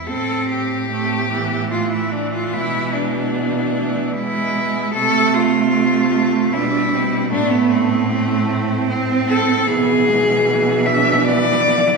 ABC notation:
X:1
M:3/4
L:1/16
Q:1/4=75
K:Am
V:1 name="Cello"
A2 G6 F E D F | E2 D6 E4 | A2 F6 E4 | D B, C6 z2 A2 |
^G6 e2 d4 |]
V:2 name="Cello"
z4 C2 B,2 A,4 | ^G,4 B,2 A,2 G,4 | A,8 D2 C2 | B,4 A,2 C6 |
B,2 ^G,2 B,2 D2 B,4 |]
V:3 name="Cello"
C4 A,2 E,6- | E,8 ^G,4 | A,4 A,4 G,2 G,2 | A,4 A,4 C4 |
E,12 |]
V:4 name="Cello" clef=bass
A,,12 | B,,12 | C,8 B,,4 | A,,12 |
B,,12 |]